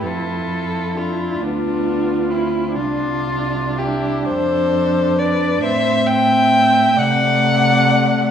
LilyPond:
<<
  \new Staff \with { instrumentName = "Violin" } { \time 6/8 \key f \lydian \tempo 4. = 44 a'4 f'8 d'4 e'8 | f'4 g'8 c''4 d''8 | \key a \dorian e''8 g''4 fis''4. | }
  \new Staff \with { instrumentName = "Violin" } { \time 6/8 \key f \lydian f'4 d'8 b4 c'8 | d'4 e'8 a'4 b'8 | \key a \dorian c''8 e''4 d''4. | }
  \new Staff \with { instrumentName = "Viola" } { \time 6/8 \key f \lydian e'4. f'4. | d'2. | \key a \dorian c'4. a4. | }
  \new Staff \with { instrumentName = "Cello" } { \clef bass \time 6/8 \key f \lydian f,4. d,4. | c,4. f,4. | \key a \dorian a,4. c4. | }
>>